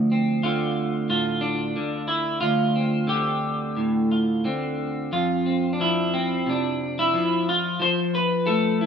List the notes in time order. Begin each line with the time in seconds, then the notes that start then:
Already playing: D2 F3
0.12 C4
0.43 D3 F4
1.10 A2 F4
1.41 D4
1.76 D3
2.08 E4
2.41 D2 F4
2.76 C4
3.07 D3 G4
3.77 A2
4.12 F4
4.45 D3 C4
5.12 F2 F4
5.46 C4
5.73 D4
5.80 F3 E4
6.14 C4
6.46 C3 D4
6.99 E4
7.14 F3
7.49 F4
7.80 F3 C5
8.15 B4
8.47 A3 A4
8.81 E4